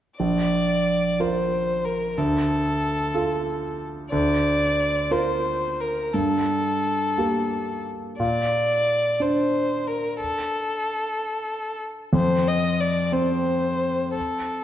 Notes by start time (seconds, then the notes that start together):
0.20 A#1 D5
1.19 F4 A#4 C5
1.85 A#4
2.18 D2 A4
3.14 F4 A4
4.12 D2 D5
5.11 F4 A#4 C5
5.80 A#4
6.14 G2 A4
7.18 A#3 G4
8.20 A#2 D5
9.20 D4 C5
9.88 A#4
10.21 A4
12.13 F2 C5
12.48 D#5
12.81 D5
13.12 C4 C5
14.17 A4